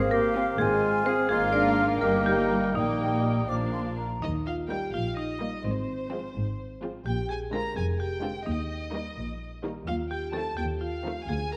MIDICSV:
0, 0, Header, 1, 12, 480
1, 0, Start_track
1, 0, Key_signature, -3, "major"
1, 0, Tempo, 471698
1, 1326, Time_signature, 6, 3, 24, 8
1, 1810, Tempo, 486618
1, 4690, Tempo, 470588
1, 11696, End_track
2, 0, Start_track
2, 0, Title_t, "Flute section"
2, 0, Program_c, 0, 73
2, 0, Note_on_c, 0, 77, 93
2, 588, Note_off_c, 0, 77, 0
2, 603, Note_on_c, 0, 80, 91
2, 1318, Note_on_c, 0, 77, 89
2, 1324, Note_off_c, 0, 80, 0
2, 2028, Note_off_c, 0, 77, 0
2, 2042, Note_on_c, 0, 75, 75
2, 2767, Note_on_c, 0, 79, 67
2, 2768, Note_off_c, 0, 75, 0
2, 3433, Note_off_c, 0, 79, 0
2, 3490, Note_on_c, 0, 86, 77
2, 3549, Note_off_c, 0, 86, 0
2, 3735, Note_on_c, 0, 84, 62
2, 3794, Note_off_c, 0, 84, 0
2, 3974, Note_on_c, 0, 82, 58
2, 4212, Note_off_c, 0, 82, 0
2, 11696, End_track
3, 0, Start_track
3, 0, Title_t, "Violin section"
3, 0, Program_c, 1, 48
3, 371, Note_on_c, 1, 77, 80
3, 547, Note_off_c, 1, 77, 0
3, 1080, Note_on_c, 1, 77, 82
3, 1262, Note_off_c, 1, 77, 0
3, 1334, Note_on_c, 1, 77, 78
3, 2011, Note_off_c, 1, 77, 0
3, 2042, Note_on_c, 1, 79, 70
3, 2768, Note_off_c, 1, 79, 0
3, 2778, Note_on_c, 1, 79, 65
3, 3486, Note_off_c, 1, 79, 0
3, 3501, Note_on_c, 1, 77, 58
3, 4023, Note_off_c, 1, 77, 0
3, 4224, Note_on_c, 1, 75, 82
3, 4303, Note_off_c, 1, 75, 0
3, 4452, Note_on_c, 1, 77, 70
3, 4531, Note_off_c, 1, 77, 0
3, 4689, Note_on_c, 1, 79, 76
3, 4925, Note_off_c, 1, 79, 0
3, 4938, Note_on_c, 1, 77, 83
3, 5170, Note_off_c, 1, 77, 0
3, 5178, Note_on_c, 1, 75, 80
3, 5647, Note_off_c, 1, 75, 0
3, 5667, Note_on_c, 1, 72, 78
3, 6865, Note_off_c, 1, 72, 0
3, 7096, Note_on_c, 1, 79, 87
3, 7320, Note_off_c, 1, 79, 0
3, 7343, Note_on_c, 1, 80, 77
3, 7425, Note_off_c, 1, 80, 0
3, 7584, Note_on_c, 1, 82, 81
3, 7815, Note_off_c, 1, 82, 0
3, 7816, Note_on_c, 1, 80, 85
3, 7897, Note_off_c, 1, 80, 0
3, 8056, Note_on_c, 1, 79, 82
3, 8520, Note_on_c, 1, 75, 81
3, 8522, Note_off_c, 1, 79, 0
3, 9722, Note_off_c, 1, 75, 0
3, 9964, Note_on_c, 1, 77, 80
3, 10046, Note_off_c, 1, 77, 0
3, 10198, Note_on_c, 1, 79, 71
3, 10436, Note_off_c, 1, 79, 0
3, 10438, Note_on_c, 1, 81, 77
3, 10677, Note_off_c, 1, 81, 0
3, 10678, Note_on_c, 1, 79, 79
3, 10760, Note_off_c, 1, 79, 0
3, 10919, Note_on_c, 1, 77, 78
3, 11397, Note_off_c, 1, 77, 0
3, 11405, Note_on_c, 1, 80, 88
3, 11650, Note_off_c, 1, 80, 0
3, 11651, Note_on_c, 1, 82, 72
3, 11696, Note_off_c, 1, 82, 0
3, 11696, End_track
4, 0, Start_track
4, 0, Title_t, "Oboe"
4, 0, Program_c, 2, 68
4, 0, Note_on_c, 2, 77, 88
4, 2770, Note_on_c, 2, 75, 64
4, 2785, Note_off_c, 2, 77, 0
4, 3494, Note_on_c, 2, 74, 55
4, 3509, Note_off_c, 2, 75, 0
4, 3980, Note_off_c, 2, 74, 0
4, 11696, End_track
5, 0, Start_track
5, 0, Title_t, "Clarinet"
5, 0, Program_c, 3, 71
5, 0, Note_on_c, 3, 68, 98
5, 119, Note_off_c, 3, 68, 0
5, 125, Note_on_c, 3, 67, 109
5, 595, Note_off_c, 3, 67, 0
5, 603, Note_on_c, 3, 65, 92
5, 1075, Note_off_c, 3, 65, 0
5, 1092, Note_on_c, 3, 68, 93
5, 1325, Note_off_c, 3, 68, 0
5, 1335, Note_on_c, 3, 65, 97
5, 1442, Note_off_c, 3, 65, 0
5, 1575, Note_on_c, 3, 70, 102
5, 2040, Note_off_c, 3, 70, 0
5, 2052, Note_on_c, 3, 67, 85
5, 2288, Note_on_c, 3, 63, 79
5, 2303, Note_off_c, 3, 67, 0
5, 2765, Note_off_c, 3, 63, 0
5, 2771, Note_on_c, 3, 58, 69
5, 3482, Note_off_c, 3, 58, 0
5, 11696, End_track
6, 0, Start_track
6, 0, Title_t, "Marimba"
6, 0, Program_c, 4, 12
6, 0, Note_on_c, 4, 72, 119
6, 106, Note_off_c, 4, 72, 0
6, 114, Note_on_c, 4, 70, 107
6, 565, Note_off_c, 4, 70, 0
6, 594, Note_on_c, 4, 68, 99
6, 1045, Note_off_c, 4, 68, 0
6, 1078, Note_on_c, 4, 72, 103
6, 1305, Note_off_c, 4, 72, 0
6, 1313, Note_on_c, 4, 68, 113
6, 1543, Note_off_c, 4, 68, 0
6, 1553, Note_on_c, 4, 74, 97
6, 2006, Note_off_c, 4, 74, 0
6, 2042, Note_on_c, 4, 70, 99
6, 2266, Note_off_c, 4, 70, 0
6, 2286, Note_on_c, 4, 67, 92
6, 2736, Note_off_c, 4, 67, 0
6, 2771, Note_on_c, 4, 63, 78
6, 3457, Note_off_c, 4, 63, 0
6, 4221, Note_on_c, 4, 63, 72
6, 4439, Note_off_c, 4, 63, 0
6, 4464, Note_on_c, 4, 65, 69
6, 4677, Note_off_c, 4, 65, 0
6, 4695, Note_on_c, 4, 67, 69
6, 4916, Note_off_c, 4, 67, 0
6, 4937, Note_on_c, 4, 65, 73
6, 5157, Note_off_c, 4, 65, 0
6, 5171, Note_on_c, 4, 63, 67
6, 5620, Note_off_c, 4, 63, 0
6, 5660, Note_on_c, 4, 60, 59
6, 6821, Note_off_c, 4, 60, 0
6, 7096, Note_on_c, 4, 67, 72
6, 7320, Note_off_c, 4, 67, 0
6, 7334, Note_on_c, 4, 68, 63
6, 7558, Note_off_c, 4, 68, 0
6, 7577, Note_on_c, 4, 70, 73
6, 7799, Note_off_c, 4, 70, 0
6, 7819, Note_on_c, 4, 68, 69
6, 8040, Note_off_c, 4, 68, 0
6, 8056, Note_on_c, 4, 67, 68
6, 8498, Note_off_c, 4, 67, 0
6, 8529, Note_on_c, 4, 63, 63
6, 9686, Note_off_c, 4, 63, 0
6, 9970, Note_on_c, 4, 65, 75
6, 10190, Note_off_c, 4, 65, 0
6, 10209, Note_on_c, 4, 67, 61
6, 10429, Note_off_c, 4, 67, 0
6, 10438, Note_on_c, 4, 69, 70
6, 10665, Note_off_c, 4, 69, 0
6, 10677, Note_on_c, 4, 67, 66
6, 10905, Note_off_c, 4, 67, 0
6, 10922, Note_on_c, 4, 65, 66
6, 11374, Note_off_c, 4, 65, 0
6, 11412, Note_on_c, 4, 68, 71
6, 11636, Note_off_c, 4, 68, 0
6, 11654, Note_on_c, 4, 70, 62
6, 11696, Note_off_c, 4, 70, 0
6, 11696, End_track
7, 0, Start_track
7, 0, Title_t, "Violin section"
7, 0, Program_c, 5, 48
7, 369, Note_on_c, 5, 65, 76
7, 546, Note_off_c, 5, 65, 0
7, 1078, Note_on_c, 5, 65, 80
7, 1260, Note_off_c, 5, 65, 0
7, 1321, Note_on_c, 5, 65, 78
7, 2004, Note_off_c, 5, 65, 0
7, 2045, Note_on_c, 5, 63, 68
7, 2762, Note_off_c, 5, 63, 0
7, 2774, Note_on_c, 5, 63, 63
7, 3484, Note_off_c, 5, 63, 0
7, 3502, Note_on_c, 5, 62, 59
7, 4013, Note_off_c, 5, 62, 0
7, 4698, Note_on_c, 5, 63, 57
7, 4700, Note_on_c, 5, 58, 58
7, 4873, Note_off_c, 5, 63, 0
7, 4874, Note_off_c, 5, 58, 0
7, 5410, Note_on_c, 5, 58, 57
7, 5411, Note_on_c, 5, 63, 54
7, 5591, Note_off_c, 5, 58, 0
7, 5591, Note_off_c, 5, 63, 0
7, 6143, Note_on_c, 5, 60, 63
7, 6144, Note_on_c, 5, 65, 58
7, 6319, Note_off_c, 5, 60, 0
7, 6320, Note_off_c, 5, 65, 0
7, 6855, Note_on_c, 5, 65, 62
7, 6858, Note_on_c, 5, 60, 60
7, 7035, Note_off_c, 5, 65, 0
7, 7037, Note_off_c, 5, 60, 0
7, 7578, Note_on_c, 5, 60, 61
7, 7585, Note_on_c, 5, 65, 60
7, 7755, Note_off_c, 5, 60, 0
7, 7759, Note_off_c, 5, 65, 0
7, 8293, Note_on_c, 5, 60, 60
7, 8294, Note_on_c, 5, 65, 55
7, 8470, Note_off_c, 5, 60, 0
7, 8471, Note_off_c, 5, 65, 0
7, 9004, Note_on_c, 5, 58, 62
7, 9004, Note_on_c, 5, 63, 61
7, 9185, Note_off_c, 5, 63, 0
7, 9186, Note_off_c, 5, 58, 0
7, 9725, Note_on_c, 5, 63, 60
7, 9727, Note_on_c, 5, 58, 60
7, 9903, Note_off_c, 5, 63, 0
7, 9904, Note_off_c, 5, 58, 0
7, 10447, Note_on_c, 5, 60, 65
7, 10450, Note_on_c, 5, 57, 59
7, 10625, Note_off_c, 5, 60, 0
7, 10626, Note_off_c, 5, 57, 0
7, 11170, Note_on_c, 5, 60, 59
7, 11174, Note_on_c, 5, 57, 58
7, 11349, Note_off_c, 5, 60, 0
7, 11352, Note_off_c, 5, 57, 0
7, 11696, End_track
8, 0, Start_track
8, 0, Title_t, "French horn section"
8, 0, Program_c, 6, 60
8, 118, Note_on_c, 6, 58, 91
8, 588, Note_on_c, 6, 56, 101
8, 591, Note_off_c, 6, 58, 0
8, 1076, Note_on_c, 6, 60, 95
8, 1077, Note_off_c, 6, 56, 0
8, 1316, Note_on_c, 6, 56, 97
8, 1321, Note_off_c, 6, 60, 0
8, 1557, Note_off_c, 6, 56, 0
8, 1559, Note_on_c, 6, 62, 84
8, 2032, Note_off_c, 6, 62, 0
8, 2041, Note_on_c, 6, 58, 91
8, 2150, Note_off_c, 6, 58, 0
8, 2284, Note_on_c, 6, 55, 77
8, 2759, Note_off_c, 6, 55, 0
8, 2763, Note_on_c, 6, 51, 66
8, 3478, Note_off_c, 6, 51, 0
8, 11696, End_track
9, 0, Start_track
9, 0, Title_t, "Bassoon"
9, 0, Program_c, 7, 70
9, 0, Note_on_c, 7, 60, 76
9, 1285, Note_off_c, 7, 60, 0
9, 1325, Note_on_c, 7, 58, 75
9, 2771, Note_on_c, 7, 55, 62
9, 2786, Note_off_c, 7, 58, 0
9, 3500, Note_on_c, 7, 53, 54
9, 3515, Note_off_c, 7, 55, 0
9, 3983, Note_off_c, 7, 53, 0
9, 11696, End_track
10, 0, Start_track
10, 0, Title_t, "Viola section"
10, 0, Program_c, 8, 48
10, 360, Note_on_c, 8, 60, 81
10, 541, Note_off_c, 8, 60, 0
10, 1080, Note_on_c, 8, 60, 80
10, 1262, Note_off_c, 8, 60, 0
10, 1321, Note_on_c, 8, 58, 77
10, 2004, Note_off_c, 8, 58, 0
10, 2039, Note_on_c, 8, 58, 69
10, 2752, Note_off_c, 8, 58, 0
10, 2770, Note_on_c, 8, 58, 66
10, 3479, Note_off_c, 8, 58, 0
10, 3490, Note_on_c, 8, 58, 55
10, 4007, Note_off_c, 8, 58, 0
10, 4689, Note_on_c, 8, 55, 55
10, 4692, Note_on_c, 8, 58, 62
10, 4868, Note_off_c, 8, 55, 0
10, 4870, Note_off_c, 8, 58, 0
10, 5414, Note_on_c, 8, 55, 57
10, 5416, Note_on_c, 8, 58, 59
10, 5593, Note_off_c, 8, 55, 0
10, 5594, Note_off_c, 8, 58, 0
10, 6142, Note_on_c, 8, 53, 55
10, 6142, Note_on_c, 8, 56, 62
10, 6319, Note_off_c, 8, 53, 0
10, 6319, Note_off_c, 8, 56, 0
10, 6862, Note_on_c, 8, 53, 58
10, 6862, Note_on_c, 8, 56, 59
10, 7039, Note_off_c, 8, 53, 0
10, 7039, Note_off_c, 8, 56, 0
10, 7575, Note_on_c, 8, 50, 61
10, 7575, Note_on_c, 8, 56, 60
10, 7754, Note_off_c, 8, 50, 0
10, 7754, Note_off_c, 8, 56, 0
10, 8288, Note_on_c, 8, 50, 61
10, 8288, Note_on_c, 8, 56, 60
10, 8467, Note_off_c, 8, 56, 0
10, 8468, Note_off_c, 8, 50, 0
10, 9009, Note_on_c, 8, 51, 56
10, 9010, Note_on_c, 8, 55, 60
10, 9189, Note_off_c, 8, 51, 0
10, 9189, Note_off_c, 8, 55, 0
10, 9728, Note_on_c, 8, 51, 62
10, 9729, Note_on_c, 8, 55, 64
10, 9905, Note_off_c, 8, 51, 0
10, 9905, Note_off_c, 8, 55, 0
10, 10445, Note_on_c, 8, 53, 57
10, 10447, Note_on_c, 8, 51, 58
10, 10624, Note_off_c, 8, 53, 0
10, 10625, Note_off_c, 8, 51, 0
10, 11167, Note_on_c, 8, 51, 60
10, 11170, Note_on_c, 8, 53, 59
10, 11348, Note_off_c, 8, 51, 0
10, 11349, Note_off_c, 8, 53, 0
10, 11696, End_track
11, 0, Start_track
11, 0, Title_t, "Cello section"
11, 0, Program_c, 10, 48
11, 0, Note_on_c, 10, 44, 90
11, 456, Note_off_c, 10, 44, 0
11, 605, Note_on_c, 10, 44, 84
11, 1176, Note_off_c, 10, 44, 0
11, 1323, Note_on_c, 10, 44, 76
11, 2005, Note_off_c, 10, 44, 0
11, 2043, Note_on_c, 10, 43, 70
11, 2753, Note_off_c, 10, 43, 0
11, 2767, Note_on_c, 10, 46, 61
11, 3484, Note_off_c, 10, 46, 0
11, 3496, Note_on_c, 10, 46, 60
11, 4009, Note_off_c, 10, 46, 0
11, 4220, Note_on_c, 10, 51, 67
11, 4781, Note_off_c, 10, 51, 0
11, 4933, Note_on_c, 10, 46, 63
11, 5505, Note_off_c, 10, 46, 0
11, 5659, Note_on_c, 10, 44, 71
11, 6232, Note_off_c, 10, 44, 0
11, 6379, Note_on_c, 10, 44, 62
11, 6950, Note_off_c, 10, 44, 0
11, 7101, Note_on_c, 10, 46, 65
11, 7669, Note_off_c, 10, 46, 0
11, 7817, Note_on_c, 10, 41, 68
11, 8383, Note_off_c, 10, 41, 0
11, 8529, Note_on_c, 10, 39, 69
11, 9101, Note_off_c, 10, 39, 0
11, 9245, Note_on_c, 10, 46, 65
11, 9815, Note_off_c, 10, 46, 0
11, 9962, Note_on_c, 10, 39, 68
11, 10533, Note_off_c, 10, 39, 0
11, 10684, Note_on_c, 10, 39, 63
11, 11260, Note_off_c, 10, 39, 0
11, 11411, Note_on_c, 10, 38, 65
11, 11696, Note_off_c, 10, 38, 0
11, 11696, End_track
12, 0, Start_track
12, 0, Title_t, "Double bass section"
12, 0, Program_c, 11, 48
12, 0, Note_on_c, 11, 32, 100
12, 459, Note_off_c, 11, 32, 0
12, 602, Note_on_c, 11, 32, 94
12, 1175, Note_off_c, 11, 32, 0
12, 1325, Note_on_c, 11, 32, 80
12, 2006, Note_off_c, 11, 32, 0
12, 2048, Note_on_c, 11, 31, 75
12, 2756, Note_off_c, 11, 31, 0
12, 2770, Note_on_c, 11, 34, 64
12, 3486, Note_off_c, 11, 34, 0
12, 3498, Note_on_c, 11, 34, 64
12, 4010, Note_off_c, 11, 34, 0
12, 4224, Note_on_c, 11, 39, 68
12, 4783, Note_off_c, 11, 39, 0
12, 4934, Note_on_c, 11, 34, 69
12, 5506, Note_off_c, 11, 34, 0
12, 5659, Note_on_c, 11, 32, 72
12, 6232, Note_off_c, 11, 32, 0
12, 6379, Note_on_c, 11, 32, 65
12, 6950, Note_off_c, 11, 32, 0
12, 7102, Note_on_c, 11, 34, 71
12, 7669, Note_off_c, 11, 34, 0
12, 7819, Note_on_c, 11, 29, 69
12, 8384, Note_off_c, 11, 29, 0
12, 8529, Note_on_c, 11, 39, 75
12, 9101, Note_off_c, 11, 39, 0
12, 9247, Note_on_c, 11, 34, 67
12, 9816, Note_off_c, 11, 34, 0
12, 9962, Note_on_c, 11, 39, 69
12, 10534, Note_off_c, 11, 39, 0
12, 10682, Note_on_c, 11, 39, 69
12, 11259, Note_off_c, 11, 39, 0
12, 11411, Note_on_c, 11, 38, 66
12, 11696, Note_off_c, 11, 38, 0
12, 11696, End_track
0, 0, End_of_file